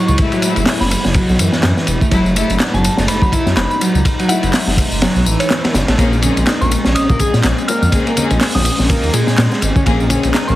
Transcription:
Already playing: ambient pad A2 G#3 E4
0.08 detuned saw bass C#2, synth bell C#6, tambourine
0.18 string section F#3 G#3 A3 E4, kick, ride, tambourine
0.32 analog synth lead F#3, ride, tambourine
0.42 analog synth lead F#3, string section F#3 G#3 A3 E4, ride, tambourine
0.56 detuned saw bass F#1, ride, tambourine
0.66 snare, clap, open hi-hat, tambourine
0.81 detuned saw bass F#1, synth bell B5, snare, tambourine
0.91 synth bell B5, ride, tambourine
1.05 detuned saw bass F#1, snare, tambourine
1.14 analog synth lead F#3, kick, ride, tambourine
1.29 detuned saw bass B1, tambourine
1.39 detuned saw bass F#2, analog synth lead E3, ride, tambourine
1.52 detuned saw bass F#2, snare, tambourine
1.63 detuned saw bass F#2, snare, clap, ride, tambourine
1.77 snare, tambourine
1.87 detuned saw bass E1, ride, tambourine
2.01 analog synth lead A3, kick, tambourine
2.11 detuned saw bass F#1, analog synth lead F#3, string section F#3 G#3 A3 E4, ambient pad D#4, kick, ride, tambourine
2.26 tambourine
2.36 string section F#3 G#3 A3 E4, analog synth lead A3, ride, tambourine
2.50 detuned saw bass F#1, ride, tambourine
2.60 analog synth lead B3, snare, clap, ride, tambourine
2.74 detuned saw bass F#1, analog synth lead F#3, synth bell A5, tambourine
2.84 ride, tambourine
2.97 detuned saw bass F#1, analog synth lead A3, snare, tambourine
3.08 detuned saw bass F#1, synth bell B5, ride, tambourine
3.22 detuned saw bass F#1, analog synth lead F#3, synth bell B5, kick, tambourine
3.32 analog synth lead E4, kick, ride, tambourine
3.46 detuned saw bass F#2, snare, tambourine
3.56 detuned saw bass F#1, synth bell B5, snare, clap, ride, tambourine
3.70 synth bell B5, tambourine
3.81 analog synth lead F#3, ride, tambourine
3.95 detuned saw bass C#2, tambourine
4.05 kick, ride, tambourine
4.19 analog synth lead F#3, ride, tambourine
4.29 string section F#3 G#3 A3 E4, analog synth lead F#3, synth bell F#5, ride, tambourine
4.43 detuned saw bass F#1, synth bell F#5, ride, tambourine
4.53 snare, clap, open hi-hat, tambourine
4.67 detuned saw bass F#1, snare, tambourine
4.77 kick, ride, tambourine
4.92 detuned saw bass F#1, tambourine
5.02 analog synth lead F#3, snare, ride, tambourine
5.16 detuned saw bass B1, tambourine
5.26 detuned saw bass A1, analog synth lead E3, tambourine
5.40 synth bell C#5, ride, tambourine
5.50 snare, clap, ride, tambourine
5.64 snare, ride, tambourine
5.74 detuned saw bass F#1, snare, ride, tambourine
5.88 detuned saw bass A1, analog synth lead A3, snare, ride, tambourine
5.98 detuned saw bass A#1, string section A#3 C4 C#4 G#4, analog synth lead A#3, ambient pad C4 C#4, kick, ride, tambourine
6.13 tambourine, high bongo
6.22 string section A#3 C4 C#4 G#4, analog synth lead C#4, ride, tambourine, high conga
6.37 detuned saw bass A#1, ride, tambourine
6.46 analog synth lead D#4, snare, clap, ride, tambourine, high bongo
6.61 detuned saw bass A#1, analog synth lead A#3, synth bell C#6, tambourine, low conga
6.71 ride, tambourine, high bongo
6.85 detuned saw bass A#1, analog synth lead C#4, snare, tambourine
6.95 detuned saw bass A#1, synth bell D#6, ride, tambourine
7.09 detuned saw bass A#1, analog synth lead A#3, synth bell D#6, kick, tambourine, high bongo
7.19 analog synth lead G#4, kick, ride, tambourine
7.34 detuned saw bass A#2, snare, tambourine, high bongo
7.43 detuned saw bass A#1, snare, clap, ride, tambourine
7.58 tambourine
7.68 analog synth lead A#3, synth bell F6, ride, tambourine, high bongo
7.82 detuned saw bass F2, synth bell F6, tambourine, high conga
7.92 string section A#3 C4 C#4 G#4, kick, ride, tambourine, high bongo
8.07 analog synth lead A#3, ride, tambourine
8.17 analog synth lead A#3, string section A#3 C4 C#4 G#4, ride, tambourine, high conga
8.30 detuned saw bass A#1, ride, tambourine, high bongo
8.41 snare, clap, open hi-hat, tambourine
8.55 detuned saw bass A#1, synth bell D#6, snare, tambourine, high bongo, low conga
8.65 synth bell D#6, ride, tambourine
8.79 detuned saw bass A#1, snare, tambourine
8.89 analog synth lead A#3, kick, ride, tambourine, high bongo
9.03 detuned saw bass D#2, tambourine
9.13 detuned saw bass A#2, analog synth lead G#3, ride, tambourine, high bongo
9.27 detuned saw bass A#2, snare, tambourine
9.38 detuned saw bass A#2, snare, clap, ride, tambourine
9.51 snare, tambourine, high bongo
9.62 detuned saw bass G#1, ride, tambourine
9.76 analog synth lead C#4, kick, tambourine, high bongo, high conga
9.86 detuned saw bass A#1, analog synth lead A#3, string section A#3 C4 C#4 G#4, kick, ride, tambourine
10.00 tambourine
10.10 string section A#3 C4 C#4 G#4, analog synth lead C#4, ride, tambourine, high bongo, high conga
10.23 detuned saw bass A#1, ride, tambourine
10.34 analog synth lead D#4, snare, clap, ride, tambourine, high bongo
10.48 detuned saw bass A#1, analog synth lead A#3, synth bell C#6, tambourine, low conga

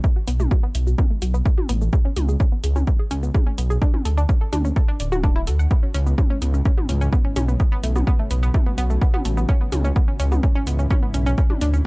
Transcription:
0.04 synth arpeggio sound A3, kick, shaker
0.16 synth arpeggio sound F#4
0.27 detuned saw bass B1, synth arpeggio sound B3, closed hi-hat, shaker
0.40 synth arpeggio sound A3, mid tom, shaker
0.51 synth arpeggio sound F#4, kick, shaker
0.63 synth arpeggio sound B3
0.75 detuned saw bass B1, synth arpeggio sound A3, closed hi-hat, shaker
0.87 synth arpeggio sound F#4, shaker
0.98 synth arpeggio sound B3, kick, mid tom, shaker
1.11 synth arpeggio sound A3
1.22 detuned saw bass B1, synth arpeggio sound F#4, closed hi-hat, shaker
1.34 synth arpeggio sound B3, shaker
1.46 synth arpeggio sound A3, kick, shaker
1.58 synth arpeggio sound F#4, mid tom
1.69 detuned saw bass A1, synth arpeggio sound B3, closed hi-hat, shaker
1.81 synth arpeggio sound A3, shaker
1.93 synth arpeggio sound G#4, kick, shaker
2.05 synth arpeggio sound C#4
2.16 detuned saw bass C#2, synth arpeggio sound B3, closed hi-hat, mid tom, shaker
2.29 synth arpeggio sound G#4, shaker
2.40 synth arpeggio sound C#4, kick, shaker
2.52 synth arpeggio sound B3
2.64 detuned saw bass C#2, synth arpeggio sound G#4, closed hi-hat, shaker
2.76 synth arpeggio sound C#4, mid tom, shaker
2.87 synth arpeggio sound B3, kick, shaker
2.99 synth arpeggio sound G#4
3.11 detuned saw bass C#2, synth arpeggio sound C#4, closed hi-hat, shaker
3.23 synth arpeggio sound B3, shaker
3.34 synth arpeggio sound G#4, kick, mid tom, shaker
3.47 synth arpeggio sound C#4
3.58 detuned saw bass B1, synth arpeggio sound B3, closed hi-hat, shaker
3.70 synth arpeggio sound G#4, shaker
3.82 synth arpeggio sound D4, kick, shaker
3.94 synth arpeggio sound C#4, mid tom
4.05 detuned saw bass D2, synth arpeggio sound A4, closed hi-hat, shaker
4.18 synth arpeggio sound D4, shaker
4.29 synth arpeggio sound C#4, kick, shaker
4.41 synth arpeggio sound A4
4.53 detuned saw bass D2, synth arpeggio sound D4, closed hi-hat, mid tom, shaker
4.65 synth arpeggio sound C#4, shaker
4.76 synth arpeggio sound A4, kick, shaker
4.88 synth arpeggio sound D4
5.00 detuned saw bass D1, synth arpeggio sound D5, closed hi-hat, shaker
5.12 synth arpeggio sound F#4, mid tom, shaker
5.24 synth arpeggio sound D4, kick, shaker
5.36 synth arpeggio sound E4
5.47 detuned saw bass D2, synth arpeggio sound A4, closed hi-hat, shaker
5.59 synth arpeggio sound F#5, shaker
5.71 ambient pad G#2 C#3 E3 C#4 E4, synth arpeggio sound B3, kick, shaker
5.83 synth arpeggio sound C#4
5.94 detuned saw bass C#2, synth arpeggio sound C#4, closed hi-hat, shaker
6.07 synth arpeggio sound B3, shaker
6.18 synth arpeggio sound C#4, kick, mid tom, shaker
6.30 synth arpeggio sound C#4
6.42 detuned saw bass C#2, synth arpeggio sound B3, closed hi-hat, shaker
6.54 synth arpeggio sound C#4, shaker
6.65 synth arpeggio sound C#4, kick, shaker
6.78 synth arpeggio sound B3, mid tom
6.89 detuned saw bass C#2, synth arpeggio sound C#4, closed hi-hat, shaker
7.01 synth arpeggio sound C#4, shaker
7.13 synth arpeggio sound B3, kick, shaker
7.25 synth arpeggio sound C#4
7.36 detuned saw bass B1, synth arpeggio sound C#4, closed hi-hat, mid tom, shaker
7.48 synth arpeggio sound B3, shaker
7.60 ambient pad B2 C#3 F#3 F#4, synth arpeggio sound B3, kick, shaker
7.72 synth arpeggio sound B3
7.83 detuned saw bass B1, synth arpeggio sound A3, closed hi-hat, shaker
7.96 synth arpeggio sound B3, mid tom, shaker
8.07 synth arpeggio sound B3, kick, shaker
8.19 synth arpeggio sound A3
8.31 detuned saw bass B1, synth arpeggio sound B3, closed hi-hat, shaker
8.43 synth arpeggio sound B3, shaker
8.54 synth arpeggio sound A3, kick, mid tom, shaker
8.66 synth arpeggio sound B3
8.78 detuned saw bass B1, synth arpeggio sound B3, closed hi-hat, shaker
8.90 synth arpeggio sound A3, shaker
9.02 synth arpeggio sound B3, kick, shaker
9.14 synth arpeggio sound B3, mid tom
9.25 detuned saw bass A1, synth arpeggio sound A3, closed hi-hat, shaker
9.37 synth arpeggio sound B3, shaker
9.49 ambient pad G#2 E3 E4, synth arpeggio sound C#4, kick, shaker
9.61 synth arpeggio sound B3
9.72 detuned saw bass C#2, synth arpeggio sound C#4, closed hi-hat, mid tom, shaker
9.85 synth arpeggio sound C#4, shaker
9.96 synth arpeggio sound B3, kick, shaker
10.08 synth arpeggio sound C#4
10.20 detuned saw bass C#2, synth arpeggio sound C#4, closed hi-hat, shaker
10.32 synth arpeggio sound B3, mid tom, shaker
10.43 synth arpeggio sound C#4, kick, shaker
10.55 synth arpeggio sound C#4
10.67 detuned saw bass C#2, synth arpeggio sound B3, closed hi-hat, shaker
10.79 synth arpeggio sound C#4, shaker
10.90 synth arpeggio sound C#4, kick, mid tom, shaker
11.03 synth arpeggio sound B3
11.14 detuned saw bass B1, synth arpeggio sound C#4, closed hi-hat, shaker
11.26 synth arpeggio sound C#4, shaker
11.38 ambient pad A2 D3 E3 D4, synth arpeggio sound C#4, kick, shaker
11.50 synth arpeggio sound D4, mid tom
11.61 detuned saw bass D2, synth arpeggio sound D4, closed hi-hat, shaker
11.74 synth arpeggio sound C#4, shaker

